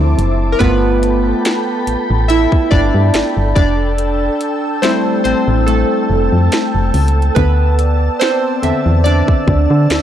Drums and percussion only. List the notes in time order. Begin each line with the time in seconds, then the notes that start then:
0.19 closed hi-hat
0.60 kick, closed hi-hat
1.03 closed hi-hat
1.45 snare, closed hi-hat
1.87 closed hi-hat
2.30 closed hi-hat
2.52 kick
2.72 kick
3.14 snare, closed hi-hat
3.56 kick, closed hi-hat
3.98 closed hi-hat
4.41 closed hi-hat
4.83 snare, closed hi-hat
5.25 closed hi-hat
5.68 closed hi-hat
6.52 snare, closed hi-hat
6.94 closed hi-hat, open hi-hat
7.08 closed hi-hat
7.22 closed hi-hat
7.36 kick, closed hi-hat
7.79 closed hi-hat
8.21 snare, closed hi-hat
8.63 closed hi-hat
9.06 closed hi-hat
9.28 kick
9.48 kick
9.90 snare, closed hi-hat